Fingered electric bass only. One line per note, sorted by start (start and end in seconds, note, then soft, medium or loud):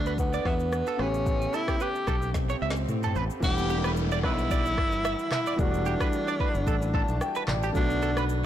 0.00 0.38 D2 medium
0.45 0.81 E2 loud
0.99 1.46 A1 loud
2.08 2.54 B1 medium
2.62 2.85 C#2 medium
2.89 3.12 A2 medium
3.16 3.28 A1 medium
3.43 4.24 E1 loud
4.24 4.78 B1 medium
4.78 5.14 G1 loud
5.59 5.95 E1 loud
6.55 6.65 G1 medium
6.67 7.03 A1 loud
7.09 7.19 B1 medium
7.48 7.71 A1 medium
7.75 8.46 B1 loud